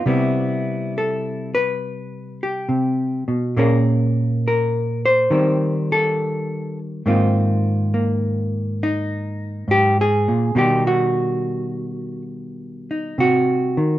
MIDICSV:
0, 0, Header, 1, 2, 480
1, 0, Start_track
1, 0, Tempo, 873362
1, 33, Time_signature, 4, 2, 24, 8
1, 7688, End_track
2, 0, Start_track
2, 0, Title_t, "Hollow-body jazz guitar"
2, 0, Program_c, 0, 26
2, 31, Note_on_c, 0, 48, 77
2, 36, Note_on_c, 0, 55, 51
2, 39, Note_on_c, 0, 59, 49
2, 45, Note_on_c, 0, 64, 50
2, 517, Note_off_c, 0, 59, 0
2, 538, Note_on_c, 0, 69, 75
2, 846, Note_off_c, 0, 64, 0
2, 850, Note_on_c, 0, 71, 89
2, 852, Note_off_c, 0, 69, 0
2, 1325, Note_off_c, 0, 71, 0
2, 1336, Note_on_c, 0, 67, 60
2, 1470, Note_off_c, 0, 48, 0
2, 1477, Note_on_c, 0, 48, 60
2, 1800, Note_off_c, 0, 48, 0
2, 1802, Note_on_c, 0, 47, 64
2, 1808, Note_off_c, 0, 67, 0
2, 1956, Note_off_c, 0, 47, 0
2, 1957, Note_off_c, 0, 55, 0
2, 1959, Note_on_c, 0, 46, 74
2, 1963, Note_on_c, 0, 58, 51
2, 1967, Note_on_c, 0, 61, 53
2, 1970, Note_on_c, 0, 68, 51
2, 1974, Note_on_c, 0, 70, 52
2, 2458, Note_off_c, 0, 70, 0
2, 2460, Note_on_c, 0, 70, 74
2, 2774, Note_off_c, 0, 70, 0
2, 2778, Note_on_c, 0, 72, 98
2, 2899, Note_off_c, 0, 46, 0
2, 2903, Note_off_c, 0, 61, 0
2, 2905, Note_off_c, 0, 68, 0
2, 2913, Note_off_c, 0, 58, 0
2, 2916, Note_on_c, 0, 51, 70
2, 2920, Note_on_c, 0, 55, 49
2, 2925, Note_on_c, 0, 60, 47
2, 3250, Note_off_c, 0, 72, 0
2, 3255, Note_on_c, 0, 69, 80
2, 3728, Note_off_c, 0, 69, 0
2, 3857, Note_off_c, 0, 51, 0
2, 3862, Note_off_c, 0, 60, 0
2, 3878, Note_off_c, 0, 55, 0
2, 3879, Note_on_c, 0, 44, 73
2, 3882, Note_on_c, 0, 51, 49
2, 3885, Note_on_c, 0, 58, 49
2, 3889, Note_on_c, 0, 60, 51
2, 3893, Note_on_c, 0, 65, 51
2, 4357, Note_off_c, 0, 58, 0
2, 4364, Note_on_c, 0, 58, 46
2, 4843, Note_off_c, 0, 60, 0
2, 4854, Note_on_c, 0, 63, 80
2, 5312, Note_off_c, 0, 44, 0
2, 5319, Note_on_c, 0, 44, 62
2, 5325, Note_off_c, 0, 63, 0
2, 5325, Note_off_c, 0, 65, 0
2, 5337, Note_on_c, 0, 67, 91
2, 5487, Note_off_c, 0, 67, 0
2, 5502, Note_on_c, 0, 68, 98
2, 5643, Note_off_c, 0, 44, 0
2, 5651, Note_on_c, 0, 46, 65
2, 5781, Note_off_c, 0, 51, 0
2, 5782, Note_off_c, 0, 58, 0
2, 5796, Note_off_c, 0, 46, 0
2, 5799, Note_on_c, 0, 47, 77
2, 5804, Note_on_c, 0, 51, 52
2, 5807, Note_on_c, 0, 55, 50
2, 5809, Note_off_c, 0, 68, 0
2, 5810, Note_on_c, 0, 63, 51
2, 5817, Note_on_c, 0, 67, 81
2, 5967, Note_off_c, 0, 67, 0
2, 5975, Note_on_c, 0, 66, 82
2, 6715, Note_off_c, 0, 66, 0
2, 7088, Note_off_c, 0, 63, 0
2, 7094, Note_on_c, 0, 63, 47
2, 7239, Note_off_c, 0, 47, 0
2, 7244, Note_on_c, 0, 48, 67
2, 7257, Note_on_c, 0, 66, 86
2, 7563, Note_off_c, 0, 51, 0
2, 7567, Note_off_c, 0, 48, 0
2, 7570, Note_on_c, 0, 51, 66
2, 7688, Note_off_c, 0, 51, 0
2, 7688, Note_off_c, 0, 55, 0
2, 7688, Note_off_c, 0, 63, 0
2, 7688, Note_off_c, 0, 66, 0
2, 7688, End_track
0, 0, End_of_file